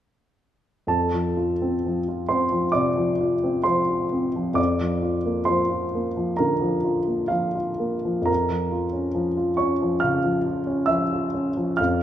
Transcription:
0.87 F2 A4 A5
1.14 F3
1.37 F4
1.62 C4
1.86 F3
2.08 F4
2.29 C4 C5 C6
2.52 F3
2.72 C3 D5 D6
2.97 F3
3.20 F4
3.44 C4
3.64 F3 C5 C6
3.90 F4
4.13 C4
4.36 F3
4.54 F2 D5 D6
4.81 F3
5.02 F4
5.25 A#3
5.45 F3 C5 C6
5.70 F4
5.95 A#3
6.17 F3
6.37 D3 A#4 A#5
6.61 F3
6.84 F4
7.07 A#3
7.28 F3 F4 F5
7.55 F4
7.79 A#3
8.05 F3
8.22 F2 A#5
8.26 A#4
8.50 F3
8.72 F4
8.93 C#4
9.15 F3
9.37 F4
9.57 C#4 C#5 C#6
9.82 F3
10.00 C#3 F5 F6
10.24 F3
10.47 F4
10.67 C#4
10.86 F3 E5 E6
11.13 F4
11.34 C#4
11.57 F3
11.77 F2 F5 F6

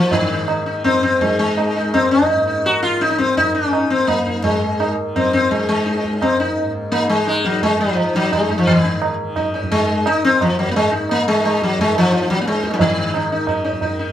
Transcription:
Already playing: D#2 G#2 D#3 F3
0.11 G#2 D#3 D#4, tabla tin, tabla ge
0.32 D#4
0.48 D#4, tabla na
0.66 D#3 D#4
0.84 C4, tabla na, tabla ge
1.02 C4, tabla ge
1.20 D#3 G#3, tabla tin, tabla ge
1.39 G#3
1.58 D#4, tabla na
1.75 D#2 D#4
1.94 C4, tabla na, tabla ge
2.11 D#4, tabla te
2.22 tabla ge
2.29 G#2 D#4, tabla tin
2.47 D#4
2.66 F#4, tabla na
2.83 D#3 F4
3.01 D#4, tabla te
3.11 D#4, tabla te
3.18 C4, tabla ke
3.29 tabla te
3.37 D#3 D#4, tabla tin, tabla ge
3.55 C#4
3.73 D#4, tabla na
3.90 D#2 C4
4.07 A#3, tabla na, tabla ge
4.26 D#4, tabla ge
4.44 G#2 G#3, tabla tin, tabla ge
4.80 D#4, tabla na
5.01 D#3
5.16 C4, tabla na, tabla ge
5.33 C4, tabla ge
5.51 D#3 G#3, tabla tin, tabla ge
5.69 G#3
5.86 D#4, tabla te
5.95 tabla te
6.04 D#2, tabla ke
6.13 tabla te
6.22 C4, tabla na, tabla ge
6.40 D#4, tabla ge
6.58 G#2, tabla tin
6.92 A#3 D#4, tabla na
7.09 G#3
7.14 D#3
7.27 G#3 D#4, tabla na
7.44 F#3 D#4, tabla ke
7.62 G#3, tabla tin, tabla ge
7.67 D#3
7.78 F3 D#4
7.97 tabla na
8.15 F#3 D#4
8.21 D#2
8.31 G#3 D#4, tabla na, tabla ge
8.49 D#4, tabla ge
8.58 F3
8.67 G#2 D#3, tabla tin, tabla ge
8.84 D#4
9.02 tabla na
9.20 D#3
9.36 D#4, tabla na, tabla ge
9.54 D#4, tabla te
9.63 tabla ge
9.71 D#3 G#3, tabla tin, tabla ge
10.06 D#4, tabla na
10.25 D#2 C4
10.41 F3, tabla na, tabla ge
10.58 F#3, tabla te
10.67 tabla ge
10.71 A#3
10.76 G#2 G#3, tabla tin
10.92 D#4
11.09 A#3, tabla na
11.28 D#3 G#3
11.44 G#3, tabla na
11.61 F#3, tabla ke
11.78 D#3 G#3, tabla tin, tabla ge
11.95 F3, tabla na
12.12 D#4, tabla te
12.21 tabla te
12.29 D#2 F#3, tabla ke
12.37 tabla te
12.41 A#3
12.46 G#3, tabla te
12.54 tabla te
12.63 D#4, tabla ke
12.71 F3, tabla te
12.80 G#2 D#3, tabla tin, tabla ge
12.98 D#4
13.14 D#4, tabla na
13.30 D#4, tabla na
13.35 D#3
13.47 D#4, tabla na, tabla ge
13.64 D#4, tabla te
13.72 tabla ge
13.81 D#3 D#4, tabla tin, tabla ge
13.99 D#4

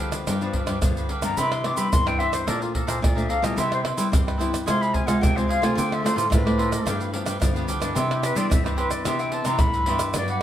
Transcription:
Already playing: D3 F3 G3 B3 D4
0.00 D4 G4 B4 F5
0.12 G4 B4 F5, pandeiro, tamborim, shaker
0.27 G2 D4 G4 B4 F5, pandeiro, tamborim, shaker, surdo
0.41 F3 B3 D4 G4 B4 F5, pandeiro, shaker
0.53 D4 G4 B4 F5, pandeiro, surdo
0.67 G2 D4 G4 B4 F5, pandeiro, tamborim, shaker
0.81 G2 D3 F3 B3 D4, pandeiro, tamborim, shaker, surdo
0.97 G4 B4 F5, pandeiro, shaker
1.09 D4 G4 B4 F5, pandeiro
1.22 G2 E3 B3 D4 A#5, pandeiro, tamborim, shaker
1.37 C3 G4 B4 C5 E5 B5, pandeiro, shaker, surdo
1.51 C6, pandeiro, tamborim, shaker
1.64 E3 B3 D4 G4 B4 C5 E5 D6, pandeiro, tamborim
1.76 G3 G4 B4 C5 E5 B5, pandeiro, shaker
1.92 G2 C4 C6, pandeiro, tamborim, shaker, surdo
2.06 E3 D4 B4 C5 E5 G5, pandeiro, tamborim, shaker
2.18 G4 B4 C5 E5, pandeiro
2.32 B4 C5 E5, pandeiro, tamborim, shaker
2.47 A#2 F3 A3 D4 A4 D5 F5 A#5, pandeiro, tamborim, shaker, surdo
2.61 F4 D5 F5 A#5, pandeiro, shaker
2.73 A4 D5 F5 A#5, pandeiro, surdo
2.87 A#2 A4 C5 D5 F5 A#5, pandeiro, tamborim, shaker
3.01 F2 A#2 F3 A3 D4 D5, pandeiro, tamborim, shaker, surdo
3.15 F3 A3 D4 D5 E5 F5 A#5, pandeiro, shaker
3.29 A4 D5 F5 A#5, pandeiro
3.42 A#2 G3 B3 E4 D#5, pandeiro, tamborim, shaker
3.56 C3 E4 B4 C5 E5 G5, pandeiro, shaker, surdo
3.72 C5, pandeiro, tamborim, shaker
3.84 E4 B4 C5 G5, pandeiro, tamborim
3.97 G3 B3 E4 B4 C5 G5, pandeiro, shaker
4.12 G2 C4, pandeiro, tamborim, shaker, surdo
4.27 B4 C5 G5, pandeiro, tamborim, shaker
4.37 G3 B3 E4 B4 C5 G5, pandeiro, shaker
4.51 B4 C5 G5, pandeiro, tamborim, shaker
4.66 C3 G#3 C4 F4 G#4 C5 F5 C6, pandeiro, tamborim, shaker, surdo
4.80 G#4 C5 F5 B5, pandeiro, shaker
4.93 F4 G#4 C5 F5 G#5, pandeiro, surdo
5.06 C3 G#3 C4 F4 G#4 C5 F5 F#5, pandeiro, tamborim, shaker
5.21 C3 G5, pandeiro, tamborim, shaker, surdo
5.35 G#3 C4 F4 G#4 C5 F5, pandeiro, shaker
5.48 F4 G#4 C5 F5, pandeiro
5.62 C3 A3 C4 F4 G#5, pandeiro, tamborim, shaker
5.75 D3 F4 A4 C5 D5 G5, pandeiro, shaker, surdo
5.92 E5, pandeiro, tamborim, shaker
6.02 A3 C4 F4 A4 C5 D5, pandeiro, tamborim, shaker
6.16 A2 F4 A4 C5 D5, pandeiro, shaker
6.30 A2 A3 C4 F4 B4, pandeiro, tamborim, shaker, surdo
6.45 A3 C4 F4 A4 C5 D5, pandeiro, tamborim, shaker
6.57 F4 A4 C5 D5, pandeiro
6.71 A4 C5 D5, pandeiro, tamborim, shaker
6.85 G2 F3 B3 D4 G4 B4 F5, pandeiro, tamborim, shaker, surdo
7.00 G4 B4 F5, pandeiro, shaker
7.12 F3 B3 D4 G4 B4 F5, pandeiro
7.25 G2 D4 G4 B4 F5, pandeiro, tamborim, shaker
7.40 G2 D3 F3 B3 D4, pandeiro, tamborim, shaker, surdo
7.54 F3 B3 D4 G4 B4 F5, pandeiro, shaker
7.67 D4 G4 B4 F5, pandeiro, shaker
7.80 G2 E3 B3 D4, pandeiro, tamborim, shaker
7.95 C3 G4 B4 C5 E5, pandeiro, shaker, surdo
8.10 G4, pandeiro, tamborim, shaker
8.23 G4 B4 C5 E5, pandeiro, tamborim, shaker
8.35 E3 G3 B3 D4 G4 B4 C5 D5 E5, pandeiro, shaker
8.50 G2 C4 E5, pandeiro, tamborim, shaker, surdo
8.64 E3 D4 G4 B4 C5 E5, pandeiro, tamborim, shaker
8.77 G4 B4 C5 E5, pandeiro
8.90 B4 C5 D5 E5, pandeiro, tamborim, shaker
9.04 C3 E3 B3 D4 G4 B4 C5 E5, pandeiro, tamborim, shaker, surdo
9.19 B4 C5 E5 G5, pandeiro, shaker
9.32 G4 B4 C5 E5 A5, pandeiro
9.45 C3 E3 B3 D4 G4 B4 C5 E5 A#5, pandeiro, tamborim, shaker
9.59 G2 A2 B5, pandeiro, tamborim, shaker, surdo
9.74 B4 C5 E5, pandeiro, shaker
9.86 G2 E3 B3 D4 G4 B4 C5 E5, pandeiro
9.99 pandeiro, tamborim, shaker
10.14 G2 F#3 B3 D4 F#4 G4 B4 D5, pandeiro, tamborim, shaker, surdo
10.28 G4 B4 D5 F#5, pandeiro, shaker

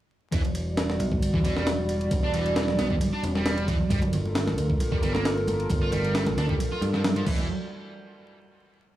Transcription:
0.32 E1 E3 G3 F#4 D5, kick, ride
0.45 ride
0.55 ride
0.77 snare, ride
0.90 snare
0.99 B1, ride
1.12 kick
1.22 G1, ride
1.34 E3, kick
1.44 E1 E3, ride
1.56 G3, snare
1.67 snare, ride
1.89 ride
2.01 ride
2.11 E1, kick, ride
2.24 D4
2.34 E3, ride
2.46 ride
2.56 E3, snare, ride
2.68 snare
2.79 B1 B3, snare, ride
2.90 E3, kick
3.01 G1, ride
3.13 D4
3.23 E1, ride
3.35 G3, snare
3.46 snare, ride
3.58 ride
3.68 E3, kick, ride
3.90 G1 G3 F4 A4 A#4, kick, ride
4.02 ride, muted conga
4.13 ride, low conga
4.25 muted conga
4.35 snare, ride
4.47 snare, high conga
4.58 D2, ride, muted conga
4.70 kick
4.80 A#1, ride, muted conga
4.92 G3, kick
5.03 G1 G3, ride
5.14 A#3, snare, muted conga
5.25 snare, ride
5.38 muted conga
5.48 ride, high conga
5.60 ride
5.70 G1, kick, ride, muted conga
5.82 F4
5.92 G3, ride, muted conga, low conga
6.05 ride
6.15 G3, snare, ride
6.26 snare, muted conga, high conga
6.37 D2 D4, snare, ride
6.49 G3, kick, muted conga
6.59 A#1, ride
6.72 F4
6.81 G2, ride, muted conga
6.94 F3, snare
7.04 snare, ride, muted conga
7.16 F3, ride
7.26 E1 E3 G3 F#4 D5, kick, crash, high conga
7.39 muted conga

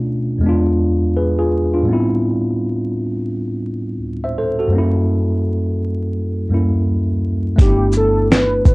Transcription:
Already playing: B2 A3 C#4 D4 F4
0.38 E2 G#3
0.44 B3 D4
0.49 F4
1.17 G#4 B4
1.39 F4 G#4
1.74 D4 F4
1.83 A2 G3
1.88 B3 C4
1.93 E4
4.24 C5 E5
4.38 A4 C5
4.59 F#4 A4
4.68 F#2 G3
4.73 A#3 C#4
4.78 E4
6.49 F#2 G3 A#3
6.53 C#4 E4
7.56 G1 A3 B3 D4, kick, closed hi-hat
7.61 D#4 G4
7.67 E4
7.92 shaker
7.97 A4
8.31 B4, snare, closed hi-hat
8.65 A1 B4, kick, shaker

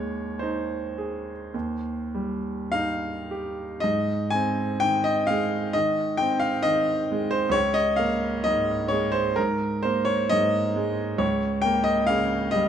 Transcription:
Already playing: D#2 G#3 C#5
0.39 D#4 C5
0.98 G#4
1.54 D#2
2.15 G3
2.72 D#4 F5
3.31 G4
3.80 G#2 D#5
4.30 C4 G#5
4.80 D#3 G5
5.04 D#5
5.27 G#3 F5
5.73 D#3 D#5
6.17 C4 G5
6.39 F5
6.63 D#3 D#5
7.12 G#3
7.31 C5
7.49 C#2 C#5
7.74 D#5
7.96 A#3 F5
8.44 G#2 D#5
8.88 G#3 C#5
9.12 C5
9.36 G#2 A#4
9.83 A#3 C5
10.05 C#5
10.29 G#2 D#5
10.76 G#3
11.18 C#2 C#5
11.62 A#3 G5
11.84 D#5
12.07 C#3 F5
12.51 G3 D#5

